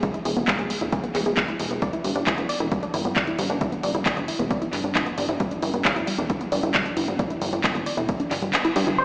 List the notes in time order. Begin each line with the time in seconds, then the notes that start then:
0.03 G#3, kick, closed hi-hat
0.14 E4, closed hi-hat
0.25 E1 G#4, open hi-hat
0.36 E1 B3, closed hi-hat
0.48 G#3, kick, clap, closed hi-hat
0.59 E1 G#4, closed hi-hat
0.70 G#3, open hi-hat
0.81 D1 E4, closed hi-hat
0.92 G#4, kick, closed hi-hat
1.04 B3, closed hi-hat
1.15 E1 G#3, clap, open hi-hat
1.26 E1 G#4, closed hi-hat
1.37 G#3, kick, clap, closed hi-hat
1.48 E4, closed hi-hat
1.59 E1 G#4, open hi-hat
1.71 E1 B3, closed hi-hat
1.82 D5, kick, closed hi-hat
1.93 E4, closed hi-hat
2.04 G1 G3, open hi-hat
2.15 G1 D4, closed hi-hat
2.27 E4, kick, clap, closed hi-hat
2.38 G1 B3, closed hi-hat
2.49 D5, open hi-hat
2.60 E1 E4
2.72 G3, kick, closed hi-hat
2.83 D4, closed hi-hat
2.94 G1 E4, open hi-hat
3.05 G1 B3, closed hi-hat
3.16 D5, kick, clap, closed hi-hat
3.27 E4, closed hi-hat
3.39 G1 G3, open hi-hat
3.50 G1 D4, closed hi-hat
3.61 E4, kick, closed hi-hat
3.72 B3, closed hi-hat
3.83 G1 D5, open hi-hat
3.95 G1 E4, closed hi-hat
4.06 G3, kick, clap, closed hi-hat
4.17 G1 D4, closed hi-hat
4.28 E4, open hi-hat
4.39 E1 B3
4.50 D5, kick, closed hi-hat
4.62 E4, closed hi-hat
4.73 G1 G3, clap, open hi-hat
4.84 G1 D4, closed hi-hat
4.95 E4, kick, clap, closed hi-hat
5.06 B3, closed hi-hat
5.18 G1 D5, open hi-hat
5.29 G1 E4, closed hi-hat
5.40 G3, kick, closed hi-hat
5.51 D4, closed hi-hat
5.62 G1 E4, open hi-hat
5.74 G1 B3, closed hi-hat
5.85 D5, kick, clap, closed hi-hat
5.96 G1 E4, closed hi-hat
6.07 G3, open hi-hat
6.18 E1 D4
6.30 E4, kick, closed hi-hat
6.41 B3, closed hi-hat
6.52 G1 D5, open hi-hat
6.63 G1 E4, closed hi-hat
6.74 G3, kick, clap, closed hi-hat
6.86 D4, closed hi-hat
6.97 G1 E4, open hi-hat
7.08 G1 B3, closed hi-hat
7.19 D5, kick, closed hi-hat
7.30 E4, closed hi-hat
7.42 G1 G3, open hi-hat
7.53 G1 D4, closed hi-hat
7.64 E4, kick, clap, closed hi-hat
7.75 G1 B3, closed hi-hat
7.86 D5, open hi-hat
7.97 E1 E4, closed hi-hat
8.09 G3, kick, closed hi-hat
8.20 D4, closed hi-hat
8.31 G1 D4, clap, open hi-hat
8.42 G1 G3, closed hi-hat
8.53 B3, clap, closed hi-hat
8.65 E4, closed hi-hat
8.76 G2 G3, open hi-hat
8.87 G1 E4, closed hi-hat
8.98 A2 E3 G3 C5